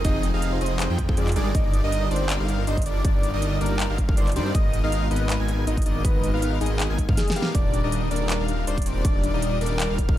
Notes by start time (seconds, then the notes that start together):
0.05 F1 F3 C4 D#4 G#4 D#5 D#6, kick, closed hi-hat
0.15 F4
0.23 C4, closed hi-hat
0.33 F1 F3 C4 D#4 G#4 D#5 F5 F6
0.42 C4, closed hi-hat
0.52 C5
0.61 F1 F3 C4 D#4 G#4 C5 D#5 D#6, closed hi-hat
0.66 closed hi-hat
0.71 F4
0.80 C4, clap, closed hi-hat
0.90 F2 F3 C4 D#4 F4 G#4 G5 G6
0.98 F4, kick, closed hi-hat
1.09 F4, kick
1.17 F2 F3 C4 D#4 G#4 C5 D5 D6, closed hi-hat
1.27 D#4, clap, closed hi-hat
1.32 closed hi-hat
1.36 G1 G3 D4 D#4 G#4 A#4 D5 D6, closed hi-hat
1.46 G4
1.54 G1 G3 D4 D#4 A#4 D5 D#5, kick, closed hi-hat
1.65 G4
1.73 D4, closed hi-hat
1.84 G1 G3 D4 D#4 A#4 D#5 D#6
1.92 D4, closed hi-hat
2.02 D5
2.11 G1 G3 D4 D#4 A#4 C5 D5 D6, closed hi-hat
2.16 closed hi-hat
2.21 G4
2.30 D4, clap, closed hi-hat
2.40 G1 G3 D4 D#4 G4 A#4 F5 F6
2.48 D4, closed hi-hat
2.59 A#4
2.67 G1 G3 D4 D#4 A#4 C5 D#5 C6, closed hi-hat
2.77 D5, kick, closed hi-hat
2.82 closed hi-hat
2.86 G1 G3 D4 D#4 A#4 D5 D6, closed hi-hat
2.96 G4
3.04 G1 G3 D4 D#4 A#4 D5 D6, kick, closed hi-hat
3.15 G4
3.23 D4, closed hi-hat
3.34 G1 G3 D4 D#4 A#4 D5 D#5 D#6
3.42 D4, closed hi-hat
3.52 D5
3.61 G1 G3 D4 D#4 A#4 D5 D6, closed hi-hat
3.66 closed hi-hat
3.71 G4
3.80 D4, clap, closed hi-hat
3.90 G1 G3 D4 D#4 G4 A#4 F5 F6
3.98 D4, kick, closed hi-hat
4.09 A#4, kick
4.17 G1 G3 D4 D#4 A#4 C5 D5 C6, closed hi-hat
4.27 D5, clap, closed hi-hat
4.32 G3 D#4, closed hi-hat
4.36 G2 D4 A#4 C5 D5 D6, closed hi-hat
4.46 G4
4.54 G#1 G#3 B3 D#4 A#4 D#5 D#6, kick, closed hi-hat
4.65 A#4
4.73 D#4, closed hi-hat
4.83 G#1 G#3 B3 D#4 A#4 B4 D#5 F5 F6
4.92 D#4, closed hi-hat
5.02 D#5
5.11 G#1 G#3 B3 D#4 A#4 B4 D#5 D#6, closed hi-hat
5.16 closed hi-hat
5.21 A#4
5.30 D#4, clap, closed hi-hat
5.40 G#1 G#3 B3 D#4 A#4 G#5 G#6
5.48 D#4, closed hi-hat
5.59 B4
5.67 G#1 G#3 B3 D#4 A#4 D#5 D#6, closed hi-hat
5.77 D#5, kick, closed hi-hat
5.82 D#4, closed hi-hat
5.86 G#1 G#3 B3 D#4 A#4 D5 D#5 D#6, closed hi-hat
5.96 A#4
6.05 G#1 G#3 B3 D#4 A#4 B4 D#5 D#6, kick, closed hi-hat
6.15 A#4
6.23 D#4, closed hi-hat
6.33 G#1 G#3 B3 D#4 A#4 B4 F5 F6
6.42 D#4, closed hi-hat
6.53 D#5
6.61 G#1 G#3 B3 D#4 G#4 A#4 D#5 D#6, closed hi-hat
6.66 closed hi-hat
6.71 A#4
6.80 D#4, clap, closed hi-hat
6.90 G#1 G#3 B3 D#4 A#4 G#5 G#6
6.98 D#4, kick, closed hi-hat
7.09 G#2 G#3 B3 D#4 A#4 B4 F5 F6, kick
7.17 D#4 G#4, snare, closed hi-hat
7.27 D#5, snare, closed hi-hat
7.32 closed hi-hat
7.36 G#3 B3 D#4 G4 A#4 F5 F6, closed hi-hat
7.42 A#4, snare
7.55 D#1 G3 D4 D#4 A#4 D5 D6, kick, closed hi-hat
7.65 D5
7.73 D4, closed hi-hat
7.84 D#1 G3 D4 D#4 A#4 D5 D#5 D#6
7.92 D4, closed hi-hat
8.03 D5
8.11 D#1 G3 D4 D#4 A#4 D5 D6, closed hi-hat
8.16 closed hi-hat
8.21 G4
8.30 D4, clap, closed hi-hat
8.40 D#1 G3 D4 D#4 A#4 D5 F5 F6
8.48 D4, closed hi-hat
8.59 A#4
8.67 D#1 G3 D4 D#4 A#4 C5 D5 C6, closed hi-hat
8.77 D5, kick, closed hi-hat
8.82 closed hi-hat
8.86 D#1 G3 D4 D#4 A#4 C5 D5 D6, closed hi-hat
8.96 G4
9.05 D#1 G3 D4 D#4 A#4 D5 D6, kick, closed hi-hat
9.15 D5
9.24 D4, closed hi-hat
9.34 D#1 G3 D4 D#4 A#4 D5 D#5 D#6
9.42 D4, closed hi-hat
9.53 D5
9.61 D#1 G3 D4 D#4 A#4 D5 D6, closed hi-hat
9.66 closed hi-hat
9.71 G4
9.80 D4, clap, closed hi-hat
9.90 D#1 G3 D4 D#4 A#4 D5 F5 F6
9.98 D4, kick, closed hi-hat
10.09 A#4, kick